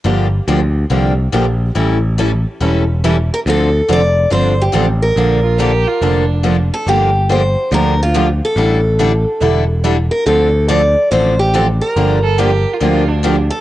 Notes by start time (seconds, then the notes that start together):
0.04 G1 D3 F3 A#3 D4 G4
0.48 D2 D3 F3 A#3 D4 G4
0.90 C2 D3 F3 A#3 D4 G4
1.32 A#1 D3 F3 A#3 D4 G4
1.75 A1 E3 G3 C#4 E4 A4
2.18 E3 G3 C#4 E4 A4
2.60 E1 E3 G3 C#4 E4 A4
3.04 E3 G3 C#4 E4 A4
3.34 A#4
3.46 D2 D3 F3 C4 D4 A4
3.88 F1 D3 F3 C4 D4 A4
3.93 D5
4.30 G1 D3 F3 C4 D4 A4 C5
4.61 G4
4.72 A1 D3 F3 C4 D4 A4
5.02 A#4
5.16 A#1 D3 F3 A#3 D4 A4
5.44 F4
5.59 D3 F3 A#3 D4 G4 A4
5.87 F4
6.01 F1 D3 F3 A#3 D4 A4
6.43 D3 F3 A#3 D4 A4
6.74 A4
6.87 G1 D3 F3 A#3 D4 G4
7.29 D3 F3 A#3 D4 G4 C5
7.72 D2 D3 F3 A#3 D4 G4 A#4
8.03 F4
8.14 D3 F3 A#3 D4 G4
8.45 A4
8.56 A1 D3 G3 D4 E4 A4
8.99 D3 G3 D4 E4 A4
9.41 E1 D3 G3 D4 E4 A4
9.84 D3 G3 D4 E4 A4
10.11 A#4
10.27 D2 D3 F3 C4 D4 A4
10.69 D3 F3 C4 D4 A4 D5
11.12 A1 D3 F3 C4 D4 A4 C5
11.39 G4
11.54 D3 F3 C4 D4 A4
11.81 A#4
11.96 G1 D3 F3 A#3 D4 G4
12.24 A4
12.38 D3 F3 A#3 D4 G4
12.74 F4
12.80 D2 D3 F3 A#3 D4 F4 G4
13.08 D4
13.23 D3 F3 A#3 D4 G4
13.51 A4